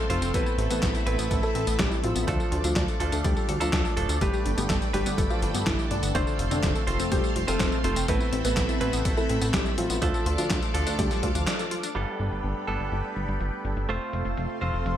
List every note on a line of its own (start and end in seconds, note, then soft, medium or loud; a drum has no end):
0.00 0.25 A3 medium
0.00 2.24 C4 medium
0.00 0.25 A4 medium
0.00 4.17 A4 medium
0.00 0.32 F5 medium
0.00 0.32 C6 medium
0.10 0.20 F1 loud
0.10 0.31 A3 medium
0.10 0.31 C4 medium
0.10 0.20 F4 medium
0.10 0.31 F4 medium
0.10 0.31 C5 loud
0.10 closed hi-hat medium
0.22 0.32 F1 medium
0.22 0.32 C4 loud
0.22 closed hi-hat medium
0.22 tambourine medium
0.34 0.44 A1 loud
0.34 1.04 A3 medium
0.34 0.62 B3 medium
0.34 1.04 C4 medium
0.34 1.04 E4 medium
0.34 0.40 A4 loud
0.34 0.62 B4 loud
0.34 1.04 B4 medium
0.34 2.26 E5 medium
0.34 2.26 B5 medium
0.34 kick loud
0.34 closed hi-hat medium
0.34 tambourine soft
0.46 0.52 E4 medium
0.46 tambourine soft
0.58 0.68 A1 loud
0.58 0.64 C4 medium
0.58 closed hi-hat medium
0.70 0.80 A1 medium
0.70 0.76 B3 loud
0.70 0.98 B3 medium
0.70 0.98 B4 medium
0.70 closed hi-hat medium
0.70 tambourine medium
0.82 0.93 A1 loud
0.82 0.92 A4 medium
0.82 kick loud
0.82 snare loud
0.82 clap loud
0.82 closed hi-hat medium
0.82 tambourine soft
0.95 1.06 E4 medium
0.95 closed hi-hat soft
0.95 tambourine soft
1.06 1.17 A1 medium
1.06 2.25 A3 medium
1.06 1.35 B3 medium
1.06 1.16 C4 medium
1.06 2.25 C4 medium
1.06 2.25 E4 medium
1.06 2.25 B4 loud
1.06 1.35 B4 medium
1.06 closed hi-hat medium
1.19 1.29 A1 medium
1.19 1.28 B3 loud
1.19 closed hi-hat medium
1.19 tambourine medium
1.31 1.41 A1 loud
1.31 1.37 A4 loud
1.31 kick loud
1.31 closed hi-hat medium
1.31 tambourine soft
1.43 1.71 A3 medium
1.43 1.49 E4 medium
1.43 1.71 A4 loud
1.43 tambourine soft
1.55 1.65 A1 loud
1.55 1.61 C4 medium
1.55 closed hi-hat medium
1.67 1.77 A1 medium
1.67 1.73 B3 loud
1.67 closed hi-hat medium
1.67 tambourine medium
1.79 1.89 A1 loud
1.79 1.98 G3 medium
1.79 1.98 G4 medium
1.79 1.89 A4 medium
1.79 kick loud
1.79 snare loud
1.79 clap loud
1.79 closed hi-hat medium
1.79 tambourine soft
1.91 2.03 E4 medium
1.91 tambourine soft
2.03 2.14 A1 loud
2.03 2.22 F3 medium
2.03 2.13 C4 medium
2.03 2.22 F4 medium
2.03 closed hi-hat medium
2.15 2.26 A1 medium
2.15 2.25 B3 loud
2.15 closed hi-hat medium
2.15 tambourine medium
2.27 2.38 D2 loud
2.27 2.98 F3 loud
2.27 2.56 F3 medium
2.27 2.97 A3 loud
2.27 2.97 D4 medium
2.27 2.56 F4 medium
2.27 2.97 A4 loud
2.27 2.33 D5 loud
2.27 6.11 D5 medium
2.27 4.20 F5 medium
2.27 4.20 D6 medium
2.27 kick loud
2.27 closed hi-hat medium
2.27 tambourine soft
2.40 2.46 A4 medium
2.40 tambourine soft
2.52 2.62 D2 loud
2.52 2.58 F4 medium
2.52 closed hi-hat medium
2.64 2.74 D2 medium
2.64 2.83 F3 medium
2.64 2.70 D4 loud
2.64 2.83 F4 medium
2.64 closed hi-hat medium
2.64 tambourine medium
2.76 2.86 D2 loud
2.76 2.86 D5 medium
2.76 kick loud
2.76 snare loud
2.76 clap loud
2.76 closed hi-hat medium
2.76 tambourine soft
2.88 3.00 A4 medium
2.88 closed hi-hat soft
2.88 tambourine soft
3.00 3.10 D2 loud
3.00 3.58 F3 medium
3.00 3.58 A3 medium
3.00 3.58 D4 medium
3.00 3.10 F4 medium
3.00 3.58 A4 medium
3.00 closed hi-hat medium
3.12 3.22 D2 medium
3.12 3.22 D4 loud
3.12 closed hi-hat soft
3.12 tambourine medium
3.24 3.35 D2 loud
3.24 3.52 G3 medium
3.24 3.52 G4 loud
3.24 3.30 D5 loud
3.24 kick loud
3.24 closed hi-hat medium
3.24 tambourine soft
3.37 3.42 A4 medium
3.37 tambourine soft
3.49 3.59 D2 medium
3.49 3.60 A4 loud
3.49 closed hi-hat medium
3.60 3.71 D2 medium
3.60 4.12 F3 medium
3.60 3.94 F3 medium
3.60 3.94 A3 medium
3.60 3.94 D4 medium
3.60 4.12 F4 medium
3.60 3.94 A4 medium
3.60 3.72 A#5 loud
3.60 closed hi-hat medium
3.60 tambourine medium
3.73 3.83 D2 loud
3.73 3.83 D4 loud
3.73 kick loud
3.73 snare loud
3.73 clap loud
3.73 closed hi-hat medium
3.73 tambourine soft
3.85 3.95 A5 medium
3.85 tambourine soft
3.97 4.07 D1 loud
3.97 4.18 F3 medium
3.97 4.18 A3 medium
3.97 4.18 D4 medium
3.97 4.09 D4 medium
3.97 4.18 A4 loud
3.97 closed hi-hat medium
4.09 4.19 D2 medium
4.09 4.19 A4 loud
4.09 closed hi-hat medium
4.09 tambourine medium
4.21 4.31 G1 loud
4.21 4.49 G3 medium
4.21 4.91 A3 medium
4.21 4.91 D4 medium
4.21 4.49 G4 medium
4.21 4.91 G4 medium
4.21 4.27 A4 loud
4.21 8.05 A4 medium
4.21 4.91 B4 medium
4.21 6.13 G5 medium
4.21 6.13 B5 medium
4.21 kick loud
4.21 closed hi-hat medium
4.21 tambourine soft
4.33 4.39 G4 medium
4.33 tambourine soft
4.45 4.56 G1 loud
4.45 4.51 D4 medium
4.45 closed hi-hat medium
4.57 4.68 G1 medium
4.57 4.86 G3 medium
4.57 4.63 B3 loud
4.57 4.86 G4 medium
4.57 closed hi-hat medium
4.57 tambourine medium
4.70 4.80 G1 loud
4.70 4.79 A4 medium
4.70 kick loud
4.70 snare loud
4.70 clap loud
4.70 closed hi-hat medium
4.70 tambourine soft
4.82 4.93 G4 medium
4.82 closed hi-hat soft
4.82 tambourine soft
4.93 5.04 G1 loud
4.93 5.22 G3 medium
4.93 6.12 A3 medium
4.93 5.04 D4 medium
4.93 6.12 D4 medium
4.93 6.12 G4 medium
4.93 5.22 G4 medium
4.93 6.12 B4 loud
4.93 closed hi-hat medium
5.06 5.16 G1 medium
5.06 5.16 B3 loud
5.06 closed hi-hat medium
5.06 tambourine medium
5.18 5.28 G1 loud
5.18 5.24 A4 loud
5.18 kick loud
5.18 closed hi-hat medium
5.18 tambourine soft
5.30 5.58 F3 medium
5.30 5.58 F4 loud
5.30 5.36 G4 medium
5.30 tambourine soft
5.42 5.52 G1 loud
5.42 5.48 D4 medium
5.42 closed hi-hat medium
5.54 5.64 G1 medium
5.54 5.60 B3 loud
5.54 closed hi-hat medium
5.54 tambourine medium
5.66 5.77 G1 loud
5.66 5.85 E3 medium
5.66 5.85 E4 medium
5.66 5.76 A4 medium
5.66 kick loud
5.66 snare loud
5.66 clap loud
5.66 closed hi-hat medium
5.66 tambourine medium
5.78 5.90 G4 medium
5.78 tambourine soft
5.91 6.01 G1 loud
5.91 6.09 D3 medium
5.91 6.00 D4 medium
5.91 6.09 D4 medium
5.91 closed hi-hat medium
6.03 6.13 G1 medium
6.03 6.12 B3 loud
6.03 closed hi-hat medium
6.03 tambourine medium
6.15 6.25 F1 loud
6.15 6.43 D3 medium
6.15 6.85 A3 medium
6.15 6.85 C4 medium
6.15 9.98 C4 medium
6.15 6.43 D4 medium
6.15 6.85 F4 medium
6.15 6.21 C5 loud
6.15 6.85 C5 medium
6.15 8.07 F5 medium
6.15 8.07 C6 medium
6.15 kick loud
6.15 closed hi-hat medium
6.15 tambourine soft
6.27 6.33 A4 medium
6.27 tambourine soft
6.39 6.49 F1 medium
6.39 6.45 F4 medium
6.39 closed hi-hat medium
6.51 6.61 F1 medium
6.51 6.70 D3 medium
6.51 6.57 C4 loud
6.51 6.70 D4 medium
6.51 closed hi-hat medium
6.51 tambourine medium
6.63 6.73 F1 loud
6.63 6.73 C5 medium
6.63 kick loud
6.63 snare loud
6.63 clap loud
6.63 closed hi-hat medium
6.63 tambourine medium
6.75 6.87 A4 medium
6.75 closed hi-hat soft
6.75 tambourine soft
6.87 6.98 F1 loud
6.87 7.46 A3 medium
6.87 7.46 C4 medium
6.87 6.97 F4 medium
6.87 7.46 F4 medium
6.87 7.46 C5 medium
6.87 closed hi-hat medium
7.00 7.10 F1 medium
7.00 7.09 C4 loud
7.00 closed hi-hat medium
7.00 tambourine medium
7.12 7.22 F1 loud
7.12 7.40 G3 medium
7.12 7.40 G4 loud
7.12 7.18 C5 loud
7.12 kick loud
7.12 closed hi-hat medium
7.12 tambourine medium
7.24 7.30 A4 medium
7.24 tambourine soft
7.36 7.46 F1 loud
7.36 7.42 F4 medium
7.36 closed hi-hat medium
7.48 7.58 F1 medium
7.48 7.99 A3 medium
7.48 7.81 A3 medium
7.48 7.54 C4 loud
7.48 7.81 C4 medium
7.48 7.81 F4 medium
7.48 7.99 A4 medium
7.48 7.81 C5 medium
7.48 closed hi-hat medium
7.48 tambourine medium
7.60 7.70 F1 loud
7.60 7.70 C5 medium
7.60 kick loud
7.60 snare loud
7.60 clap loud
7.60 closed hi-hat medium
7.60 tambourine medium
7.72 7.84 A4 medium
7.72 tambourine soft
7.84 7.94 F1 loud
7.84 8.06 A3 medium
7.84 8.06 C4 medium
7.84 7.94 F4 medium
7.84 8.06 F4 medium
7.84 8.06 C5 loud
7.84 closed hi-hat medium
7.96 8.06 F1 medium
7.96 8.06 C4 loud
7.96 closed hi-hat medium
7.96 tambourine medium
8.08 8.18 A1 loud
8.08 8.78 A3 medium
8.08 8.36 B3 medium
8.08 8.78 C4 medium
8.08 8.78 E4 medium
8.08 8.14 A4 loud
8.08 10.00 A4 medium
8.08 8.36 B4 loud
8.08 8.78 B4 medium
8.08 10.00 E5 medium
8.08 10.00 B5 medium
8.08 kick loud
8.08 closed hi-hat medium
8.08 tambourine medium
8.20 8.26 E4 medium
8.20 tambourine soft
8.33 8.43 A1 loud
8.33 8.38 C4 medium
8.33 closed hi-hat medium
8.45 8.55 A1 medium
8.45 8.51 B3 loud
8.45 8.73 B3 medium
8.45 8.73 B4 loud
8.45 closed hi-hat medium
8.45 tambourine medium
8.57 8.67 A1 loud
8.57 8.67 A4 medium
8.57 kick loud
8.57 snare loud
8.57 clap loud
8.57 closed hi-hat medium
8.57 tambourine medium
8.69 8.80 E4 medium
8.69 closed hi-hat soft
8.69 tambourine soft
8.81 8.91 A1 loud
8.81 9.99 A3 medium
8.81 9.09 B3 medium
8.81 8.91 C4 medium
8.81 9.99 C4 medium
8.81 9.99 E4 medium
8.81 9.99 B4 medium
8.81 9.09 B4 loud
8.81 closed hi-hat medium
8.93 9.03 A1 medium
8.93 9.03 B3 loud
8.93 closed hi-hat medium
8.93 tambourine medium
9.05 9.15 A1 loud
9.05 9.11 A4 loud
9.05 kick loud
9.05 closed hi-hat medium
9.05 tambourine medium
9.17 9.45 A3 medium
9.17 9.23 E4 medium
9.17 9.45 A4 loud
9.17 tambourine soft
9.29 9.39 A1 medium
9.29 9.35 C4 medium
9.29 closed hi-hat medium
9.41 9.52 A1 medium
9.41 9.47 B3 loud
9.41 closed hi-hat medium
9.41 tambourine medium
9.54 9.64 A1 loud
9.54 9.72 G3 medium
9.54 9.72 G4 medium
9.54 9.63 A4 medium
9.54 kick loud
9.54 snare loud
9.54 clap loud
9.54 closed hi-hat medium
9.54 tambourine medium
9.66 9.77 E4 medium
9.66 tambourine soft
9.78 9.88 A1 loud
9.78 9.96 F3 medium
9.78 9.88 C4 medium
9.78 9.96 F4 medium
9.78 closed hi-hat medium
9.90 10.00 A1 medium
9.90 10.00 B3 loud
9.90 closed hi-hat medium
9.90 tambourine medium
10.02 10.12 D2 loud
10.02 10.72 F3 loud
10.02 10.30 F3 medium
10.02 10.72 A3 medium
10.02 10.72 D4 medium
10.02 10.30 F4 loud
10.02 11.94 A4 medium
10.02 10.72 A4 loud
10.02 10.08 D5 loud
10.02 11.94 D5 medium
10.02 11.94 F5 medium
10.02 11.94 D6 medium
10.02 kick loud
10.02 closed hi-hat medium
10.02 tambourine medium
10.14 10.20 A4 medium
10.14 tambourine soft
10.26 10.36 D2 medium
10.26 10.32 F4 medium
10.26 closed hi-hat medium
10.38 10.48 D2 medium
10.38 10.57 F3 medium
10.38 10.44 D4 loud
10.38 10.57 F4 medium
10.38 closed hi-hat medium
10.38 tambourine medium
10.50 10.60 D2 loud
10.50 10.60 D5 medium
10.50 kick loud
10.50 snare loud
10.50 clap loud
10.50 closed hi-hat medium
10.50 tambourine medium
10.63 10.74 A4 medium
10.63 closed hi-hat soft
10.63 tambourine soft
10.74 10.85 D2 medium
10.74 11.33 F3 medium
10.74 11.33 A3 medium
10.74 11.33 D4 medium
10.74 10.84 F4 medium
10.74 11.33 A4 medium
10.74 closed hi-hat medium
10.87 10.97 D2 medium
10.87 10.96 D4 loud
10.87 closed hi-hat medium
10.87 tambourine medium
10.99 11.09 D2 loud
10.99 11.27 G3 medium
10.99 11.27 G4 medium
10.99 11.05 D5 loud
10.99 kick loud
10.99 closed hi-hat medium
10.99 tambourine medium
11.11 11.17 A4 medium
11.11 snare soft
11.11 closed hi-hat soft
11.11 tambourine soft
11.23 11.33 D2 medium
11.23 11.29 F4 medium
11.23 kick medium
11.23 closed hi-hat medium
11.35 11.45 D2 medium
11.35 11.86 F3 medium
11.35 11.41 D4 loud
11.35 11.86 F4 medium
11.35 closed hi-hat medium
11.35 tambourine medium
11.47 11.57 D5 medium
11.47 snare loud
11.47 clap loud
11.47 closed hi-hat medium
11.47 tambourine medium
11.59 11.71 A4 medium
11.59 closed hi-hat soft
11.59 tambourine soft
11.71 11.81 F4 medium
11.71 closed hi-hat medium
11.83 11.93 D4 loud
11.83 closed hi-hat medium
11.83 tambourine medium
11.95 12.06 G1 loud
11.95 12.65 G3 medium
11.95 12.65 B3 medium
11.95 12.65 D4 medium
11.95 14.97 A4 medium
11.95 12.65 A4 medium
11.95 13.87 D5 medium
11.95 13.87 G5 medium
11.95 13.87 B5 medium
11.95 closed hi-hat medium
11.95 crash medium
12.08 closed hi-hat soft
12.20 12.30 G1 medium
12.20 closed hi-hat medium
12.32 12.42 G1 medium
12.32 closed hi-hat medium
12.44 12.54 G1 loud
12.44 closed hi-hat medium
12.56 closed hi-hat soft
12.68 12.78 G1 medium
12.68 13.86 G3 medium
12.68 13.86 B3 medium
12.68 13.86 D4 medium
12.68 13.86 A4 medium
12.68 closed hi-hat medium
12.80 12.90 G1 medium
12.80 closed hi-hat medium
12.92 13.02 G1 loud
12.92 closed hi-hat medium
13.04 closed hi-hat soft
13.16 13.26 G1 medium
13.16 closed hi-hat medium
13.28 13.39 G1 medium
13.28 closed hi-hat soft
13.40 13.51 G1 loud
13.40 closed hi-hat medium
13.65 13.75 G1 medium
13.65 closed hi-hat medium
13.77 13.87 G1 medium
13.77 closed hi-hat medium
13.89 13.99 F1 loud
13.89 14.59 A3 medium
13.89 14.97 C4 medium
13.89 14.59 C4 medium
13.89 14.59 F4 medium
13.89 14.59 C5 medium
13.89 14.97 F5 medium
13.89 14.97 C6 medium
13.89 closed hi-hat medium
14.01 closed hi-hat soft
14.13 14.23 F1 medium
14.13 closed hi-hat medium
14.25 14.35 F1 medium
14.25 closed hi-hat soft
14.37 14.47 F1 loud
14.37 closed hi-hat medium
14.50 closed hi-hat soft
14.61 14.72 F1 medium
14.61 14.97 A3 medium
14.61 14.97 C4 medium
14.61 14.97 F4 medium
14.61 14.97 C5 medium
14.61 closed hi-hat medium
14.74 14.84 F1 medium
14.74 closed hi-hat soft
14.86 14.96 F1 loud
14.86 closed hi-hat medium